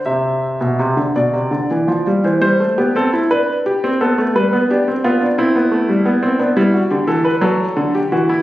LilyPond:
<<
  \new Staff \with { instrumentName = "Grand piano" } { \time 6/8 \key c \major \tempo 4. = 57 e''4. d''4. | c''16 c''8 g'16 a'8 b'8 g'8 a'8 | b'8 g'8 f'8 e'4. | d'16 e'16 fis'16 g'16 a'16 b'16 a'8. g'16 fis'16 e'16 | }
  \new Staff \with { instrumentName = "Grand piano" } { \clef bass \time 6/8 \key c \major c8. b,16 c16 d16 b,16 c16 d16 e16 f16 g16 | e16 g16 a16 b16 c'16 e'16 d'8. c'16 b16 a16 | g16 b16 d'16 c'16 b16 d'16 c'16 b16 a16 g16 b16 c'16 | b16 g8 d16 e8 fis8 d8 e8 | }
>>